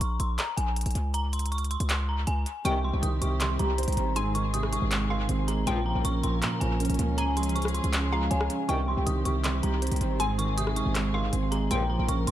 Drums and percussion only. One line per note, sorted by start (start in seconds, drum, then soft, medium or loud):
0.01 closed hi-hat medium
0.20 closed hi-hat medium
0.38 clap loud
0.38 closed hi-hat medium
0.58 closed hi-hat medium
0.76 closed hi-hat medium
0.81 closed hi-hat medium
0.86 closed hi-hat medium
0.91 closed hi-hat soft
0.95 closed hi-hat medium
1.14 closed hi-hat medium
1.33 closed hi-hat medium
1.39 closed hi-hat medium
1.46 closed hi-hat medium
1.52 closed hi-hat medium
1.58 closed hi-hat soft
1.64 closed hi-hat soft
1.71 closed hi-hat medium
1.80 closed hi-hat medium
1.89 clap loud
1.89 closed hi-hat medium
2.27 closed hi-hat medium
2.46 closed hi-hat medium
2.65 closed hi-hat medium
3.03 closed hi-hat medium
3.22 closed hi-hat medium
3.40 clap loud
3.40 closed hi-hat medium
3.59 closed hi-hat medium
3.78 closed hi-hat medium
3.83 closed hi-hat medium
3.88 closed hi-hat medium
3.92 closed hi-hat soft
3.97 closed hi-hat medium
4.16 closed hi-hat medium
4.35 closed hi-hat medium
4.54 closed hi-hat medium
4.63 cross-stick medium
4.73 closed hi-hat medium
4.91 clap loud
4.91 closed hi-hat medium
5.29 closed hi-hat medium
5.48 closed hi-hat medium
5.67 closed hi-hat medium
6.05 closed hi-hat medium
6.24 closed hi-hat medium
6.42 clap loud
6.42 closed hi-hat medium
6.61 closed hi-hat medium
6.80 closed hi-hat medium
6.85 closed hi-hat medium
6.90 closed hi-hat medium
6.94 closed hi-hat soft
6.99 closed hi-hat medium
7.18 closed hi-hat medium
7.37 closed hi-hat medium
7.43 closed hi-hat medium
7.49 closed hi-hat medium
7.56 closed hi-hat medium
7.62 cross-stick medium
7.62 closed hi-hat soft
7.68 closed hi-hat soft
7.75 closed hi-hat medium
7.84 closed hi-hat medium
7.93 clap loud
7.93 closed hi-hat medium
8.31 closed hi-hat medium
8.41 cross-stick loud
8.50 closed hi-hat medium
8.69 closed hi-hat medium
9.07 closed hi-hat medium
9.25 closed hi-hat medium
9.44 clap loud
9.44 closed hi-hat medium
9.63 closed hi-hat medium
9.82 closed hi-hat medium
9.87 closed hi-hat medium
9.92 closed hi-hat medium
9.96 closed hi-hat soft
10.01 closed hi-hat medium
10.20 closed hi-hat medium
10.39 closed hi-hat medium
10.58 closed hi-hat medium
10.67 cross-stick medium
10.76 closed hi-hat medium
10.95 clap loud
10.95 closed hi-hat medium
11.33 closed hi-hat medium
11.52 closed hi-hat medium
11.71 closed hi-hat medium
12.09 closed hi-hat medium
12.27 closed hi-hat medium